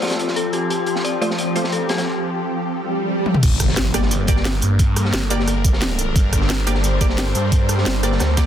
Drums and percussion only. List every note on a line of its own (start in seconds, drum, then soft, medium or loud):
0.02 snare medium
0.02 closed hi-hat medium
0.06 snare medium
0.06 closed hi-hat medium
0.10 snare loud
0.10 closed hi-hat medium
0.19 closed hi-hat medium
0.28 snare soft
0.36 closed hi-hat medium
0.53 closed hi-hat medium
0.70 closed hi-hat medium
0.86 closed hi-hat medium
0.96 snare soft
1.05 closed hi-hat medium
1.22 closed hi-hat medium
1.31 snare soft
1.38 closed hi-hat medium
1.56 closed hi-hat medium
1.64 snare soft
1.72 closed hi-hat medium
1.89 snare loud
1.89 closed hi-hat medium
1.98 snare loud
1.98 closed hi-hat medium
3.26 high tom medium
3.34 mid tom medium
3.43 kick loud
3.43 closed hi-hat medium
3.43 crash loud
3.60 kick medium
3.60 cross-stick medium
3.60 closed hi-hat medium
3.60 closed hi-hat loud
3.68 snare medium
3.76 snare loud
3.76 closed hi-hat medium
3.94 cross-stick medium
3.94 closed hi-hat loud
3.94 closed hi-hat medium
4.02 snare soft
4.11 closed hi-hat loud
4.11 closed hi-hat medium
4.27 kick loud
4.27 closed hi-hat medium
4.27 closed hi-hat loud
4.36 snare medium
4.45 snare loud
4.45 closed hi-hat medium
4.61 closed hi-hat medium
4.79 kick loud
4.79 closed hi-hat loud
4.79 closed hi-hat medium
4.96 cross-stick medium
4.96 closed hi-hat loud
4.96 closed hi-hat medium
5.05 snare medium
5.13 snare loud
5.13 closed hi-hat medium
5.30 closed hi-hat medium
5.30 closed hi-hat loud
5.40 snare soft
5.48 cross-stick medium
5.48 closed hi-hat medium
5.65 kick loud
5.65 closed hi-hat medium
5.73 snare medium
5.81 snare loud
5.81 closed hi-hat medium
5.99 closed hi-hat medium
6.16 kick loud
6.16 closed hi-hat medium
6.16 closed hi-hat loud
6.32 kick medium
6.32 cross-stick medium
6.32 closed hi-hat medium
6.32 closed hi-hat loud
6.41 snare medium
6.49 snare loud
6.49 closed hi-hat medium
6.67 cross-stick medium
6.67 closed hi-hat medium
6.67 closed hi-hat loud
6.75 snare soft
6.84 closed hi-hat medium
7.01 kick loud
7.01 closed hi-hat medium
7.09 snare medium
7.18 snare loud
7.18 closed hi-hat medium
7.35 closed hi-hat medium
7.52 kick loud
7.52 closed hi-hat medium
7.69 cross-stick medium
7.69 closed hi-hat medium
7.78 snare medium
7.86 snare loud
7.86 closed hi-hat medium
8.03 cross-stick medium
8.03 closed hi-hat medium
8.12 snare medium
8.19 cross-stick medium
8.19 snare loud
8.19 closed hi-hat medium
8.37 kick loud
8.37 snare loud
8.37 closed hi-hat medium